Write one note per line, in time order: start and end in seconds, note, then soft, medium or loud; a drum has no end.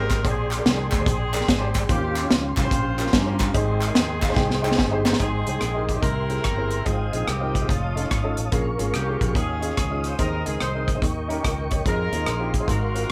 0.00 0.25 G#1 medium
0.00 0.15 C4 medium
0.00 0.21 D#4 medium
0.00 0.15 G4 medium
0.00 0.21 G4 medium
0.00 0.15 G#4 medium
0.00 0.22 A#4 medium
0.00 0.26 A#4 loud
0.00 0.15 C5 medium
0.00 0.23 D#5 medium
0.00 1.86 G5 medium
0.00 3.50 C6 medium
0.10 kick medium
0.10 snare soft
0.10 clap medium
0.10 closed hi-hat medium
0.23 0.60 A#1 medium
0.23 0.88 A#2 medium
0.23 0.64 C4 medium
0.23 0.47 D4 medium
0.23 0.64 D4 medium
0.23 0.48 G4 medium
0.23 0.48 G#4 medium
0.23 1.88 G#4 medium
0.23 0.52 G#4 medium
0.23 0.48 C5 medium
0.23 1.88 D5 medium
0.23 kick loud
0.23 closed hi-hat medium
0.51 0.66 G4 medium
0.51 clap medium
0.51 closed hi-hat medium
0.57 0.83 D4 medium
0.57 0.83 G4 medium
0.57 0.84 G#4 medium
0.57 0.84 A#4 medium
0.65 0.88 C2 medium
0.65 1.06 C4 medium
0.65 1.06 D4 medium
0.65 1.07 G#4 medium
0.65 snare loud
0.65 closed hi-hat medium
0.92 1.05 D2 medium
0.92 kick loud
0.92 clap loud
0.92 closed hi-hat medium
0.99 1.17 D4 medium
0.99 1.17 G4 medium
0.99 1.17 G#4 medium
0.99 1.17 C5 medium
1.06 1.42 A#1 medium
1.06 1.86 C4 medium
1.06 1.85 D4 medium
1.06 1.72 G#4 medium
1.06 kick loud
1.06 closed hi-hat medium
1.33 1.46 D4 medium
1.33 1.46 G4 medium
1.33 1.47 G#4 medium
1.33 1.47 A#4 medium
1.33 clap medium
1.33 closed hi-hat medium
1.41 snare soft
1.48 1.83 G#1 medium
1.48 kick loud
1.48 snare loud
1.48 closed hi-hat medium
1.60 1.80 D4 medium
1.60 1.80 G4 medium
1.60 1.80 G#4 medium
1.60 1.80 C5 loud
1.74 kick medium
1.74 clap medium
1.74 closed hi-hat medium
1.89 2.25 D#2 loud
1.89 2.54 D#3 medium
1.89 2.69 A#3 medium
1.89 2.13 C#4 medium
1.89 3.53 C#4 medium
1.89 2.69 C#4 medium
1.89 2.13 F4 medium
1.89 2.13 G4 medium
1.89 3.53 G4 medium
1.89 2.29 G4 medium
1.89 2.13 C5 medium
1.89 3.53 F5 medium
1.89 kick loud
1.89 closed hi-hat medium
2.16 clap loud
2.16 closed hi-hat medium
2.22 2.48 C#4 medium
2.22 2.49 F4 medium
2.22 2.49 G4 medium
2.22 2.49 C#5 medium
2.31 2.54 C#2 medium
2.31 snare loud
2.31 closed hi-hat medium
2.57 2.70 C2 loud
2.57 3.37 F4 medium
2.57 3.13 G4 medium
2.57 3.10 C5 medium
2.57 kick loud
2.57 clap medium
2.57 closed hi-hat medium
2.63 2.81 C#4 medium
2.63 2.82 F4 medium
2.63 2.82 G4 medium
2.63 2.82 C5 medium
2.71 3.07 A#1 medium
2.71 kick loud
2.71 closed hi-hat medium
2.98 3.11 C#4 medium
2.98 3.11 F4 medium
2.98 3.12 G4 medium
2.98 3.12 A#4 medium
2.98 clap medium
2.98 closed hi-hat medium
3.06 snare soft
3.13 3.48 G2 medium
3.13 3.53 C#4 medium
3.13 3.52 G4 medium
3.13 3.56 A#4 medium
3.13 kick medium
3.13 snare loud
3.13 closed hi-hat medium
3.26 3.45 C#4 medium
3.26 3.45 F4 medium
3.26 3.46 G4 medium
3.26 3.46 C5 medium
3.39 kick medium
3.39 snare soft
3.39 clap medium
3.39 closed hi-hat medium
3.54 3.90 G#1 loud
3.54 4.19 G#2 medium
3.54 4.75 C4 medium
3.54 3.78 D#4 medium
3.54 4.75 D#4 medium
3.54 3.78 G4 medium
3.54 3.78 G#4 medium
3.54 5.18 G#4 medium
3.54 4.76 G#4 medium
3.54 3.79 C5 medium
3.54 5.18 D#5 medium
3.54 5.18 G5 medium
3.54 5.18 C6 medium
3.54 kick loud
3.54 closed hi-hat medium
3.81 clap loud
3.81 closed hi-hat medium
3.88 4.14 D#4 medium
3.88 4.14 G4 medium
3.88 4.14 G#4 medium
3.88 4.14 A#4 medium
3.95 4.31 D#2 medium
3.95 snare loud
3.95 closed hi-hat medium
4.22 4.36 F5 medium
4.22 kick medium
4.22 clap medium
4.22 closed hi-hat medium
4.29 4.47 D#4 medium
4.29 4.47 G4 medium
4.29 4.47 G#4 medium
4.29 4.47 C5 medium
4.36 4.80 C2 medium
4.36 4.62 G5 medium
4.36 kick loud
4.36 snare medium
4.50 snare medium
4.63 4.76 D#4 medium
4.63 4.77 G4 medium
4.63 4.77 G#4 medium
4.63 4.77 C5 medium
4.63 4.77 G5 medium
4.63 clap medium
4.71 snare medium
4.78 5.14 G1 loud
4.78 5.03 G#5 medium
4.78 kick medium
4.78 snare medium
4.91 5.11 D#4 medium
4.91 5.11 G4 medium
4.91 5.11 G#4 medium
4.91 5.11 C5 loud
5.05 5.19 A#5 medium
5.05 snare loud
5.05 clap medium
5.13 snare medium
5.19 5.43 G#1 medium
5.19 5.84 G#2 medium
5.19 6.00 C4 medium
5.19 5.35 D#4 medium
5.19 6.00 D#4 medium
5.19 5.36 G4 medium
5.19 6.02 G#4 medium
5.19 5.36 G#4 medium
5.19 5.85 G#4 medium
5.19 5.36 C5 medium
5.19 6.02 D#5 medium
5.19 6.02 G5 medium
5.19 6.84 C6 medium
5.19 kick medium
5.19 closed hi-hat medium
5.46 5.60 C2 medium
5.46 5.59 D#4 medium
5.46 5.60 G4 medium
5.46 5.60 G#4 medium
5.46 5.60 C5 medium
5.46 closed hi-hat medium
5.61 5.97 A#1 medium
5.61 cross-stick loud
5.61 closed hi-hat medium
5.75 5.90 D#4 medium
5.75 5.90 G4 medium
5.75 5.90 G#4 medium
5.75 5.90 A#4 medium
5.89 6.03 G4 medium
5.89 kick medium
5.89 closed hi-hat medium
5.95 6.03 D#4 medium
5.95 6.03 G4 medium
5.95 6.03 G#4 medium
5.95 6.04 D#5 medium
6.02 6.38 C2 medium
6.02 6.68 C3 medium
6.02 6.83 E4 medium
6.02 6.83 G4 medium
6.02 6.86 A#4 loud
6.02 6.85 A#4 medium
6.02 6.85 E5 medium
6.02 7.68 G5 medium
6.02 kick loud
6.02 closed hi-hat medium
6.30 6.43 C4 medium
6.30 6.43 E4 medium
6.30 6.43 G#4 medium
6.30 6.43 A#4 medium
6.30 closed hi-hat medium
6.37 cross-stick soft
6.44 6.80 G1 medium
6.44 kick medium
6.44 cross-stick loud
6.44 closed hi-hat medium
6.57 6.77 C4 medium
6.57 6.77 E4 medium
6.57 6.77 G#4 medium
6.57 6.77 A#4 medium
6.71 cross-stick soft
6.71 closed hi-hat medium
6.85 7.09 G#1 medium
6.85 7.51 G#2 medium
6.85 7.01 C4 medium
6.85 7.28 C4 medium
6.85 7.02 D#4 medium
6.85 7.28 D#4 medium
6.85 7.02 F4 medium
6.85 7.27 G#4 medium
6.85 7.02 G#4 medium
6.85 7.69 C5 medium
6.85 10.16 F5 medium
6.85 8.51 D#6 medium
6.85 kick medium
6.85 closed hi-hat medium
7.12 7.26 A#1 medium
7.12 7.25 C4 medium
7.12 7.26 D#4 medium
7.12 7.26 F4 medium
7.12 7.26 G#4 medium
7.12 closed hi-hat medium
7.28 7.63 C2 medium
7.28 7.67 C4 medium
7.28 7.67 D#4 medium
7.28 7.69 G4 medium
7.28 cross-stick loud
7.28 closed hi-hat medium
7.41 7.56 C4 medium
7.41 7.56 D#4 medium
7.41 7.56 F4 medium
7.41 7.56 A#4 medium
7.55 kick medium
7.55 closed hi-hat medium
7.62 7.69 C4 medium
7.62 7.69 D#4 medium
7.62 7.69 F4 medium
7.62 7.70 G#4 medium
7.69 8.05 F1 medium
7.69 8.49 G#3 medium
7.69 8.49 A3 medium
7.69 8.38 F4 medium
7.69 8.52 C#5 medium
7.69 8.52 A5 medium
7.69 kick loud
7.69 closed hi-hat medium
7.95 8.09 C#4 medium
7.95 8.09 D#4 medium
7.95 8.09 F4 medium
7.95 8.09 A4 medium
7.95 closed hi-hat medium
8.04 cross-stick soft
8.11 8.34 G#1 medium
8.11 kick medium
8.11 cross-stick loud
8.11 closed hi-hat medium
8.23 8.43 C#4 medium
8.23 8.43 D#4 medium
8.23 8.43 F4 medium
8.23 8.43 A4 medium
8.37 8.51 A1 medium
8.37 closed hi-hat medium
8.52 8.75 A#1 medium
8.52 9.17 A#2 medium
8.52 8.68 A#3 medium
8.52 8.68 C#4 medium
8.52 8.68 F4 medium
8.52 8.69 G#4 loud
8.52 9.35 A#4 medium
8.52 9.35 C#6 medium
8.52 kick loud
8.52 closed hi-hat medium
8.78 8.92 G#1 medium
8.78 8.92 A#3 medium
8.78 8.92 C#4 medium
8.78 8.92 F4 medium
8.78 8.92 G#4 medium
8.78 closed hi-hat medium
8.94 9.17 C2 medium
8.94 9.33 C#4 medium
8.94 9.34 G4 medium
8.94 cross-stick loud
8.94 closed hi-hat medium
9.07 9.22 A#3 medium
9.07 9.22 C#4 medium
9.07 9.22 F4 medium
9.07 9.23 G#4 medium
9.21 9.33 A#1 medium
9.21 kick medium
9.21 closed hi-hat medium
9.27 9.35 A#3 medium
9.27 9.35 C#4 medium
9.27 9.36 F4 medium
9.27 9.36 G#4 medium
9.35 9.71 D#2 medium
9.35 10.00 D#3 medium
9.35 10.16 C#4 medium
9.35 10.16 F4 medium
9.35 10.01 G#4 loud
9.35 10.18 C#5 medium
9.35 11.01 D#6 medium
9.35 kick loud
9.35 closed hi-hat medium
9.61 9.75 C#4 medium
9.61 9.75 D#4 medium
9.61 9.75 F4 medium
9.61 9.75 G#4 medium
9.61 closed hi-hat medium
9.70 cross-stick soft
9.77 10.13 C#2 medium
9.77 kick medium
9.77 cross-stick loud
9.77 closed hi-hat medium
9.90 10.10 C#4 medium
9.90 10.10 D#4 medium
9.90 10.10 F4 medium
9.90 10.10 G#4 medium
10.04 10.19 C5 medium
10.04 cross-stick soft
10.04 closed hi-hat medium
10.19 10.42 D#2 medium
10.19 10.84 D#3 medium
10.19 10.35 C4 medium
10.19 10.35 D#4 medium
10.19 10.60 D#4 medium
10.19 10.35 G#4 medium
10.19 10.44 A#4 medium
10.19 11.02 C5 medium
10.19 10.35 C5 medium
10.19 11.02 D#5 medium
10.19 kick medium
10.19 closed hi-hat medium
10.45 10.59 C#2 medium
10.45 10.58 C4 medium
10.45 10.59 D#4 medium
10.45 10.60 G#4 medium
10.45 10.59 G#4 medium
10.45 10.59 A#4 medium
10.45 closed hi-hat medium
10.60 10.97 C2 medium
10.60 11.00 D#4 medium
10.60 11.00 G#4 medium
10.60 11.00 C5 medium
10.60 cross-stick loud
10.60 closed hi-hat medium
10.74 10.89 C4 medium
10.74 10.89 D#4 medium
10.74 10.89 G#4 medium
10.74 10.90 A#4 medium
10.88 kick medium
10.88 closed hi-hat medium
10.95 11.02 C4 medium
10.95 11.02 D#4 medium
10.95 11.03 G#4 medium
10.95 11.03 C5 medium
11.02 11.38 D#2 medium
11.02 11.67 D#3 medium
11.02 11.85 A#4 medium
11.02 12.68 D#5 medium
11.02 11.85 G5 medium
11.02 11.85 C#6 medium
11.02 kick loud
11.02 closed hi-hat medium
11.28 11.42 C#4 medium
11.28 11.42 D#4 medium
11.28 11.42 G4 medium
11.28 11.42 A#4 medium
11.28 11.43 A#5 medium
11.28 closed hi-hat medium
11.44 11.80 C#2 medium
11.44 11.70 F4 soft
11.44 11.70 A#4 medium
11.44 11.69 G5 medium
11.44 kick medium
11.44 cross-stick loud
11.44 closed hi-hat medium
11.71 12.11 G4 medium
11.71 12.10 C#5 medium
11.71 11.85 D#5 medium
11.71 kick medium
11.71 closed hi-hat medium
11.85 12.09 F2 medium
11.85 12.01 C4 medium
11.85 12.01 D#4 medium
11.85 12.65 D#4 medium
11.85 12.02 F4 medium
11.85 12.68 G#4 medium
11.85 12.02 G#4 medium
11.85 12.52 A#4 loud
11.85 12.67 F5 medium
11.85 13.12 C6 medium
11.85 kick medium
11.85 closed hi-hat medium
12.12 12.25 D#2 medium
12.12 12.25 C4 medium
12.12 12.25 D#4 medium
12.12 12.25 F4 medium
12.12 12.26 G#4 medium
12.12 closed hi-hat medium
12.26 12.63 A#1 medium
12.26 cross-stick loud
12.26 closed hi-hat medium
12.40 12.55 C4 medium
12.40 12.55 D#4 medium
12.40 12.55 F4 medium
12.40 12.55 G4 medium
12.54 12.70 G#4 medium
12.54 kick medium
12.54 closed hi-hat medium
12.60 12.68 C4 medium
12.60 12.68 D#4 medium
12.60 12.68 F4 medium
12.60 12.69 G#4 medium
12.68 13.04 G#1 medium
12.68 13.12 G#2 medium
12.68 13.12 D#4 medium
12.68 13.12 F#4 medium
12.68 13.12 A#4 medium
12.68 13.12 A#4 loud
12.68 13.12 F5 medium
12.68 13.12 F#5 medium
12.68 kick loud
12.68 closed hi-hat medium
12.94 13.08 C4 medium
12.94 13.08 F4 medium
12.94 13.08 F#4 medium
12.94 13.09 A#4 medium
12.94 closed hi-hat medium
13.03 cross-stick soft